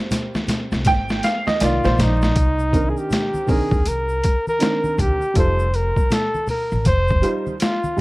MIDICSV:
0, 0, Header, 1, 5, 480
1, 0, Start_track
1, 0, Key_signature, -3, "minor"
1, 0, Tempo, 750000
1, 1510, Time_signature, 4, 2, 24, 8
1, 5125, End_track
2, 0, Start_track
2, 0, Title_t, "Flugelhorn"
2, 0, Program_c, 0, 56
2, 1045, Note_on_c, 0, 65, 97
2, 1288, Note_on_c, 0, 63, 101
2, 1297, Note_off_c, 0, 65, 0
2, 1852, Note_on_c, 0, 68, 68
2, 1861, Note_off_c, 0, 63, 0
2, 1910, Note_on_c, 0, 67, 91
2, 1919, Note_off_c, 0, 68, 0
2, 2241, Note_on_c, 0, 68, 84
2, 2251, Note_off_c, 0, 67, 0
2, 2482, Note_on_c, 0, 70, 101
2, 2491, Note_off_c, 0, 68, 0
2, 2865, Note_off_c, 0, 70, 0
2, 2870, Note_on_c, 0, 70, 100
2, 3201, Note_on_c, 0, 67, 94
2, 3211, Note_off_c, 0, 70, 0
2, 3436, Note_off_c, 0, 67, 0
2, 3441, Note_on_c, 0, 72, 93
2, 3682, Note_on_c, 0, 70, 90
2, 3691, Note_off_c, 0, 72, 0
2, 3923, Note_on_c, 0, 69, 101
2, 3933, Note_off_c, 0, 70, 0
2, 4157, Note_off_c, 0, 69, 0
2, 4160, Note_on_c, 0, 70, 87
2, 4379, Note_off_c, 0, 70, 0
2, 4397, Note_on_c, 0, 72, 112
2, 4695, Note_off_c, 0, 72, 0
2, 4882, Note_on_c, 0, 65, 94
2, 5100, Note_off_c, 0, 65, 0
2, 5125, End_track
3, 0, Start_track
3, 0, Title_t, "Upright piano"
3, 0, Program_c, 1, 0
3, 0, Note_on_c, 1, 55, 62
3, 0, Note_on_c, 1, 58, 54
3, 0, Note_on_c, 1, 60, 69
3, 559, Note_on_c, 1, 79, 115
3, 793, Note_on_c, 1, 77, 91
3, 802, Note_off_c, 1, 79, 0
3, 930, Note_off_c, 1, 77, 0
3, 940, Note_on_c, 1, 75, 97
3, 1003, Note_off_c, 1, 55, 0
3, 1006, Note_off_c, 1, 58, 0
3, 1007, Note_off_c, 1, 60, 0
3, 1025, Note_on_c, 1, 51, 50
3, 1031, Note_on_c, 1, 58, 52
3, 1032, Note_on_c, 1, 74, 78
3, 1034, Note_off_c, 1, 75, 0
3, 1181, Note_on_c, 1, 72, 86
3, 1484, Note_off_c, 1, 51, 0
3, 1487, Note_off_c, 1, 58, 0
3, 1488, Note_off_c, 1, 72, 0
3, 1488, Note_off_c, 1, 74, 0
3, 1740, Note_on_c, 1, 51, 61
3, 1747, Note_on_c, 1, 60, 54
3, 1753, Note_on_c, 1, 62, 52
3, 1758, Note_on_c, 1, 70, 68
3, 2208, Note_off_c, 1, 51, 0
3, 2216, Note_off_c, 1, 60, 0
3, 2217, Note_on_c, 1, 51, 72
3, 2221, Note_off_c, 1, 62, 0
3, 2225, Note_on_c, 1, 60, 59
3, 2228, Note_off_c, 1, 70, 0
3, 2231, Note_on_c, 1, 62, 58
3, 2237, Note_on_c, 1, 70, 76
3, 2409, Note_off_c, 1, 51, 0
3, 2413, Note_off_c, 1, 60, 0
3, 2416, Note_off_c, 1, 62, 0
3, 2419, Note_off_c, 1, 70, 0
3, 2937, Note_on_c, 1, 51, 65
3, 2945, Note_on_c, 1, 60, 57
3, 2951, Note_on_c, 1, 62, 55
3, 2957, Note_on_c, 1, 70, 73
3, 3303, Note_off_c, 1, 51, 0
3, 3307, Note_off_c, 1, 60, 0
3, 3309, Note_off_c, 1, 62, 0
3, 3313, Note_off_c, 1, 70, 0
3, 3417, Note_on_c, 1, 55, 65
3, 3423, Note_on_c, 1, 63, 54
3, 3429, Note_on_c, 1, 65, 59
3, 3435, Note_on_c, 1, 69, 71
3, 3609, Note_off_c, 1, 55, 0
3, 3612, Note_off_c, 1, 63, 0
3, 3615, Note_off_c, 1, 65, 0
3, 3618, Note_off_c, 1, 69, 0
3, 4619, Note_on_c, 1, 55, 72
3, 4625, Note_on_c, 1, 63, 65
3, 4630, Note_on_c, 1, 65, 67
3, 4636, Note_on_c, 1, 72, 80
3, 4810, Note_off_c, 1, 55, 0
3, 4813, Note_off_c, 1, 63, 0
3, 4815, Note_off_c, 1, 65, 0
3, 4818, Note_off_c, 1, 72, 0
3, 5098, Note_on_c, 1, 55, 67
3, 5104, Note_on_c, 1, 62, 62
3, 5125, Note_off_c, 1, 55, 0
3, 5125, Note_off_c, 1, 62, 0
3, 5125, End_track
4, 0, Start_track
4, 0, Title_t, "Upright bass"
4, 0, Program_c, 2, 32
4, 460, Note_on_c, 2, 36, 89
4, 551, Note_off_c, 2, 36, 0
4, 551, Note_on_c, 2, 32, 94
4, 764, Note_off_c, 2, 32, 0
4, 1032, Note_on_c, 2, 36, 92
4, 1164, Note_off_c, 2, 36, 0
4, 1180, Note_on_c, 2, 34, 85
4, 1261, Note_off_c, 2, 34, 0
4, 1271, Note_on_c, 2, 34, 85
4, 1485, Note_off_c, 2, 34, 0
4, 1511, Note_on_c, 2, 36, 84
4, 1857, Note_off_c, 2, 36, 0
4, 2377, Note_on_c, 2, 39, 82
4, 2459, Note_off_c, 2, 39, 0
4, 2471, Note_on_c, 2, 36, 86
4, 2685, Note_off_c, 2, 36, 0
4, 3192, Note_on_c, 2, 38, 85
4, 3324, Note_off_c, 2, 38, 0
4, 3431, Note_on_c, 2, 29, 86
4, 3777, Note_off_c, 2, 29, 0
4, 4300, Note_on_c, 2, 33, 85
4, 4381, Note_off_c, 2, 33, 0
4, 4391, Note_on_c, 2, 29, 92
4, 4605, Note_off_c, 2, 29, 0
4, 5125, End_track
5, 0, Start_track
5, 0, Title_t, "Drums"
5, 70, Note_on_c, 9, 64, 60
5, 70, Note_on_c, 9, 82, 59
5, 74, Note_on_c, 9, 42, 89
5, 75, Note_on_c, 9, 38, 65
5, 134, Note_off_c, 9, 64, 0
5, 134, Note_off_c, 9, 82, 0
5, 138, Note_off_c, 9, 42, 0
5, 139, Note_off_c, 9, 38, 0
5, 223, Note_on_c, 9, 63, 56
5, 223, Note_on_c, 9, 82, 43
5, 224, Note_on_c, 9, 38, 62
5, 287, Note_off_c, 9, 63, 0
5, 287, Note_off_c, 9, 82, 0
5, 288, Note_off_c, 9, 38, 0
5, 306, Note_on_c, 9, 64, 61
5, 306, Note_on_c, 9, 82, 48
5, 310, Note_on_c, 9, 42, 69
5, 316, Note_on_c, 9, 38, 73
5, 370, Note_off_c, 9, 64, 0
5, 370, Note_off_c, 9, 82, 0
5, 374, Note_off_c, 9, 42, 0
5, 380, Note_off_c, 9, 38, 0
5, 460, Note_on_c, 9, 82, 46
5, 465, Note_on_c, 9, 38, 61
5, 524, Note_off_c, 9, 82, 0
5, 529, Note_off_c, 9, 38, 0
5, 542, Note_on_c, 9, 42, 84
5, 549, Note_on_c, 9, 63, 49
5, 549, Note_on_c, 9, 82, 62
5, 551, Note_on_c, 9, 36, 83
5, 555, Note_on_c, 9, 38, 86
5, 606, Note_off_c, 9, 42, 0
5, 613, Note_off_c, 9, 63, 0
5, 613, Note_off_c, 9, 82, 0
5, 615, Note_off_c, 9, 36, 0
5, 619, Note_off_c, 9, 38, 0
5, 696, Note_on_c, 9, 82, 47
5, 706, Note_on_c, 9, 38, 80
5, 760, Note_off_c, 9, 82, 0
5, 770, Note_off_c, 9, 38, 0
5, 787, Note_on_c, 9, 42, 62
5, 794, Note_on_c, 9, 82, 44
5, 796, Note_on_c, 9, 38, 79
5, 851, Note_off_c, 9, 42, 0
5, 858, Note_off_c, 9, 82, 0
5, 860, Note_off_c, 9, 38, 0
5, 943, Note_on_c, 9, 63, 58
5, 943, Note_on_c, 9, 82, 42
5, 945, Note_on_c, 9, 38, 73
5, 1007, Note_off_c, 9, 63, 0
5, 1007, Note_off_c, 9, 82, 0
5, 1009, Note_off_c, 9, 38, 0
5, 1026, Note_on_c, 9, 42, 103
5, 1031, Note_on_c, 9, 82, 63
5, 1038, Note_on_c, 9, 38, 89
5, 1090, Note_off_c, 9, 42, 0
5, 1095, Note_off_c, 9, 82, 0
5, 1102, Note_off_c, 9, 38, 0
5, 1178, Note_on_c, 9, 63, 64
5, 1178, Note_on_c, 9, 82, 48
5, 1187, Note_on_c, 9, 38, 85
5, 1242, Note_off_c, 9, 63, 0
5, 1242, Note_off_c, 9, 82, 0
5, 1251, Note_off_c, 9, 38, 0
5, 1270, Note_on_c, 9, 64, 77
5, 1270, Note_on_c, 9, 82, 52
5, 1277, Note_on_c, 9, 42, 70
5, 1278, Note_on_c, 9, 38, 98
5, 1334, Note_off_c, 9, 64, 0
5, 1334, Note_off_c, 9, 82, 0
5, 1341, Note_off_c, 9, 42, 0
5, 1342, Note_off_c, 9, 38, 0
5, 1420, Note_on_c, 9, 82, 50
5, 1426, Note_on_c, 9, 38, 81
5, 1484, Note_off_c, 9, 82, 0
5, 1490, Note_off_c, 9, 38, 0
5, 1508, Note_on_c, 9, 42, 90
5, 1511, Note_on_c, 9, 36, 101
5, 1512, Note_on_c, 9, 82, 55
5, 1572, Note_off_c, 9, 42, 0
5, 1575, Note_off_c, 9, 36, 0
5, 1576, Note_off_c, 9, 82, 0
5, 1658, Note_on_c, 9, 82, 45
5, 1722, Note_off_c, 9, 82, 0
5, 1748, Note_on_c, 9, 36, 84
5, 1751, Note_on_c, 9, 82, 44
5, 1753, Note_on_c, 9, 42, 61
5, 1812, Note_off_c, 9, 36, 0
5, 1815, Note_off_c, 9, 82, 0
5, 1817, Note_off_c, 9, 42, 0
5, 1903, Note_on_c, 9, 82, 42
5, 1967, Note_off_c, 9, 82, 0
5, 1988, Note_on_c, 9, 64, 57
5, 1988, Note_on_c, 9, 82, 61
5, 2000, Note_on_c, 9, 42, 86
5, 2002, Note_on_c, 9, 38, 102
5, 2052, Note_off_c, 9, 64, 0
5, 2052, Note_off_c, 9, 82, 0
5, 2064, Note_off_c, 9, 42, 0
5, 2066, Note_off_c, 9, 38, 0
5, 2139, Note_on_c, 9, 63, 58
5, 2139, Note_on_c, 9, 82, 41
5, 2203, Note_off_c, 9, 63, 0
5, 2203, Note_off_c, 9, 82, 0
5, 2225, Note_on_c, 9, 64, 62
5, 2225, Note_on_c, 9, 82, 45
5, 2231, Note_on_c, 9, 36, 88
5, 2234, Note_on_c, 9, 46, 47
5, 2289, Note_off_c, 9, 64, 0
5, 2289, Note_off_c, 9, 82, 0
5, 2295, Note_off_c, 9, 36, 0
5, 2298, Note_off_c, 9, 46, 0
5, 2377, Note_on_c, 9, 36, 96
5, 2380, Note_on_c, 9, 82, 42
5, 2441, Note_off_c, 9, 36, 0
5, 2444, Note_off_c, 9, 82, 0
5, 2467, Note_on_c, 9, 42, 90
5, 2468, Note_on_c, 9, 63, 42
5, 2468, Note_on_c, 9, 82, 62
5, 2531, Note_off_c, 9, 42, 0
5, 2532, Note_off_c, 9, 63, 0
5, 2532, Note_off_c, 9, 82, 0
5, 2616, Note_on_c, 9, 82, 45
5, 2680, Note_off_c, 9, 82, 0
5, 2711, Note_on_c, 9, 42, 67
5, 2712, Note_on_c, 9, 82, 41
5, 2716, Note_on_c, 9, 36, 85
5, 2775, Note_off_c, 9, 42, 0
5, 2776, Note_off_c, 9, 82, 0
5, 2780, Note_off_c, 9, 36, 0
5, 2862, Note_on_c, 9, 63, 47
5, 2862, Note_on_c, 9, 82, 37
5, 2926, Note_off_c, 9, 63, 0
5, 2926, Note_off_c, 9, 82, 0
5, 2946, Note_on_c, 9, 42, 94
5, 2951, Note_on_c, 9, 82, 65
5, 2960, Note_on_c, 9, 38, 104
5, 3010, Note_off_c, 9, 42, 0
5, 3015, Note_off_c, 9, 82, 0
5, 3024, Note_off_c, 9, 38, 0
5, 3098, Note_on_c, 9, 63, 58
5, 3098, Note_on_c, 9, 82, 44
5, 3162, Note_off_c, 9, 63, 0
5, 3162, Note_off_c, 9, 82, 0
5, 3188, Note_on_c, 9, 64, 72
5, 3188, Note_on_c, 9, 82, 51
5, 3191, Note_on_c, 9, 36, 73
5, 3196, Note_on_c, 9, 42, 64
5, 3252, Note_off_c, 9, 64, 0
5, 3252, Note_off_c, 9, 82, 0
5, 3255, Note_off_c, 9, 36, 0
5, 3260, Note_off_c, 9, 42, 0
5, 3339, Note_on_c, 9, 82, 43
5, 3403, Note_off_c, 9, 82, 0
5, 3426, Note_on_c, 9, 42, 86
5, 3429, Note_on_c, 9, 36, 106
5, 3431, Note_on_c, 9, 82, 51
5, 3490, Note_off_c, 9, 42, 0
5, 3493, Note_off_c, 9, 36, 0
5, 3495, Note_off_c, 9, 82, 0
5, 3580, Note_on_c, 9, 82, 46
5, 3644, Note_off_c, 9, 82, 0
5, 3671, Note_on_c, 9, 82, 41
5, 3672, Note_on_c, 9, 42, 55
5, 3735, Note_off_c, 9, 82, 0
5, 3736, Note_off_c, 9, 42, 0
5, 3817, Note_on_c, 9, 36, 80
5, 3820, Note_on_c, 9, 82, 44
5, 3881, Note_off_c, 9, 36, 0
5, 3884, Note_off_c, 9, 82, 0
5, 3907, Note_on_c, 9, 64, 59
5, 3907, Note_on_c, 9, 82, 59
5, 3915, Note_on_c, 9, 42, 80
5, 3917, Note_on_c, 9, 38, 101
5, 3971, Note_off_c, 9, 64, 0
5, 3971, Note_off_c, 9, 82, 0
5, 3979, Note_off_c, 9, 42, 0
5, 3981, Note_off_c, 9, 38, 0
5, 4061, Note_on_c, 9, 63, 57
5, 4061, Note_on_c, 9, 82, 42
5, 4125, Note_off_c, 9, 63, 0
5, 4125, Note_off_c, 9, 82, 0
5, 4143, Note_on_c, 9, 64, 64
5, 4143, Note_on_c, 9, 82, 50
5, 4152, Note_on_c, 9, 46, 46
5, 4207, Note_off_c, 9, 64, 0
5, 4207, Note_off_c, 9, 82, 0
5, 4216, Note_off_c, 9, 46, 0
5, 4298, Note_on_c, 9, 82, 43
5, 4362, Note_off_c, 9, 82, 0
5, 4385, Note_on_c, 9, 42, 83
5, 4386, Note_on_c, 9, 63, 46
5, 4386, Note_on_c, 9, 82, 59
5, 4391, Note_on_c, 9, 36, 85
5, 4449, Note_off_c, 9, 42, 0
5, 4450, Note_off_c, 9, 63, 0
5, 4450, Note_off_c, 9, 82, 0
5, 4455, Note_off_c, 9, 36, 0
5, 4532, Note_on_c, 9, 82, 43
5, 4547, Note_on_c, 9, 36, 93
5, 4596, Note_off_c, 9, 82, 0
5, 4611, Note_off_c, 9, 36, 0
5, 4627, Note_on_c, 9, 42, 68
5, 4628, Note_on_c, 9, 82, 46
5, 4691, Note_off_c, 9, 42, 0
5, 4692, Note_off_c, 9, 82, 0
5, 4779, Note_on_c, 9, 63, 53
5, 4779, Note_on_c, 9, 82, 38
5, 4843, Note_off_c, 9, 63, 0
5, 4843, Note_off_c, 9, 82, 0
5, 4863, Note_on_c, 9, 42, 89
5, 4867, Note_on_c, 9, 82, 61
5, 4878, Note_on_c, 9, 38, 111
5, 4927, Note_off_c, 9, 42, 0
5, 4931, Note_off_c, 9, 82, 0
5, 4942, Note_off_c, 9, 38, 0
5, 5016, Note_on_c, 9, 63, 59
5, 5016, Note_on_c, 9, 82, 47
5, 5080, Note_off_c, 9, 63, 0
5, 5080, Note_off_c, 9, 82, 0
5, 5125, End_track
0, 0, End_of_file